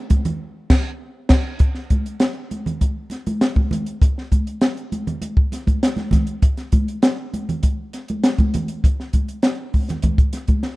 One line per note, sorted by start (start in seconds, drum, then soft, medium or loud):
0.10 kick medium
0.10 closed hi-hat medium
0.10 high conga medium
0.25 closed hi-hat medium
0.25 low conga medium
0.70 kick loud
0.70 snare loud
0.70 crash medium
1.29 kick loud
1.29 snare loud
1.29 crash medium
1.59 kick loud
1.59 closed hi-hat medium
1.75 snare soft
1.90 kick medium
1.90 closed hi-hat medium
1.90 high conga medium
2.06 closed hi-hat soft
2.20 snare medium
2.20 closed hi-hat medium
2.20 muted conga soft
2.51 closed hi-hat medium
2.51 high conga medium
2.66 closed hi-hat soft
2.66 low conga medium
2.81 kick medium
2.81 closed hi-hat medium
2.81 high conga soft
3.10 snare soft
3.10 closed hi-hat medium
3.10 muted conga soft
3.27 closed hi-hat soft
3.27 high conga medium
3.41 snare medium
3.41 closed hi-hat medium
3.41 muted conga soft
3.56 kick medium
3.56 high conga medium
3.71 closed hi-hat medium
3.71 high conga medium
3.71 low conga medium
3.86 closed hi-hat soft
4.01 kick loud
4.01 closed hi-hat medium
4.01 muted conga soft
4.18 snare soft
4.32 kick medium
4.32 closed hi-hat medium
4.32 high conga medium
4.47 closed hi-hat soft
4.61 snare medium
4.61 closed hi-hat medium
4.61 muted conga soft
4.77 closed hi-hat soft
4.92 closed hi-hat medium
4.92 muted conga soft
4.92 high conga medium
5.07 closed hi-hat soft
5.07 low conga medium
5.21 closed hi-hat medium
5.21 high conga medium
5.37 kick loud
5.52 snare soft
5.52 closed hi-hat medium
5.52 muted conga soft
5.67 kick medium
5.67 closed hi-hat soft
5.67 high conga medium
5.83 snare medium
5.83 closed hi-hat medium
5.97 snare soft
5.97 closed hi-hat soft
5.97 high conga medium
6.11 kick medium
6.11 snare soft
6.11 closed hi-hat medium
6.11 muted conga soft
6.11 high conga medium
6.11 low conga medium
6.27 closed hi-hat soft
6.42 kick loud
6.42 closed hi-hat medium
6.42 muted conga soft
6.57 snare soft
6.57 closed hi-hat soft
6.72 kick medium
6.72 closed hi-hat medium
6.72 muted conga soft
6.72 high conga medium
6.88 closed hi-hat soft
7.02 snare loud
7.02 closed hi-hat medium
7.02 muted conga soft
7.34 closed hi-hat medium
7.34 high conga medium
7.49 closed hi-hat soft
7.49 low conga medium
7.63 kick medium
7.63 closed hi-hat medium
7.63 high conga soft
7.93 snare soft
7.93 closed hi-hat medium
8.08 closed hi-hat medium
8.08 high conga medium
8.24 snare loud
8.24 closed hi-hat medium
8.38 kick medium
8.38 closed hi-hat soft
8.38 high conga medium
8.54 closed hi-hat medium
8.54 high conga medium
8.54 low conga medium
8.68 closed hi-hat medium
8.84 kick loud
8.84 closed hi-hat medium
8.84 muted conga soft
9.00 snare soft
9.13 kick medium
9.13 closed hi-hat medium
9.13 high conga medium
9.28 closed hi-hat soft
9.43 snare medium
9.43 closed hi-hat medium
9.43 muted conga soft
9.74 kick medium
9.74 open hi-hat soft
9.74 high conga medium
9.88 snare soft
9.88 closed hi-hat soft
9.88 low conga medium
10.02 kick medium
10.02 closed hi-hat medium
10.02 muted conga soft
10.02 high conga medium
10.02 low conga medium
10.18 kick loud
10.18 closed hi-hat soft
10.33 snare soft
10.33 closed hi-hat medium
10.33 muted conga soft
10.47 kick medium
10.47 closed hi-hat soft
10.47 high conga medium
10.63 snare soft
10.63 muted conga soft